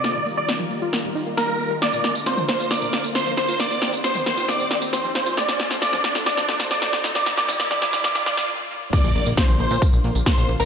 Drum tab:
CC |----------------|----------------|----------------|----------------|
HH |xxoxxxoxxxoxxxox|xxoxxxoxxxoxxxox|xxoxxxoxxxoxxxox|xxoxxxoxxxoxxxox|
TB |----------------|xx-xxx-xxx-xxx-x|xx-xxx-xxx-xxx-x|xx-xxx-xxx-xxx-x|
SD |o---o---o---o---|o-o-o-o-o-o-o-o-|o-o-o-o-o-o-o-o-|oooooooooooooooo|
T2 |----------------|-----o----------|-----oo---------|-----o----------|
BD |----------------|----------------|----------------|----------------|

CC |----------------|x---------------|
HH |xxoxxxoxxxox----|xxoxxxoxxxoxxxox|
TB |xx-xxx-xxx-x----|xx-xxx-xxx-xxx-x|
SD |oooooooooooo----|----o-------o---|
T2 |---o-oo---------|-----o----------|
BD |----------------|o---o---o---o---|